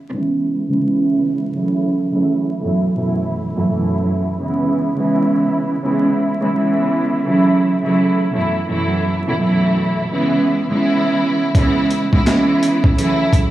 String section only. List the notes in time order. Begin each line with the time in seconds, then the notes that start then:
0.10 C#3 E3 G#3 B3 E4
0.68 C#3 E3 G#3 B3 E4
0.81 C#3 E3 G#3 B3 E4
1.53 C#3 E3 F#3 A3 E4
2.11 C#3 E3 F#3 A3 E4
2.60 F#2 B2 E3 F#3 A3 E4
2.95 F#2 B2 E3 F#3 A3 E4
3.54 F#2 B2 E3 F#3 A3 E4
3.67 F#2 B2 E3 F#3 A3 E4
4.39 C#3 E3 G#3 B3 E4
4.96 C#3 E3 G#3 B3 E4
5.82 C#3 E3 G#3 B3 E4
6.40 C#3 E3 G#3 B3 E4
6.53 C#3 E3 G#3 B3 E4
7.25 C#3 E3 F#3 A3 E4
7.83 C#3 E3 F#3 A3 E4
8.31 F#2 B2 E3 F#3 A3 E4
8.66 F#2 B2 E3 F#3 A3 E4
9.26 F#2 B2 E3 F#3 A3 E4
9.38 F#2 B2 E3 F#3 A3 E4
10.11 C#3 E3 G#3 B3 E4
10.68 C#3 E3 G#3 B3 E4
11.53 C#3 E3 G#3 B3 E4
12.11 C#3 E3 G#3 B3 E4
12.24 C#3 E3 G#3 B3 E4
12.97 C#3 E3 F#3 A3 E4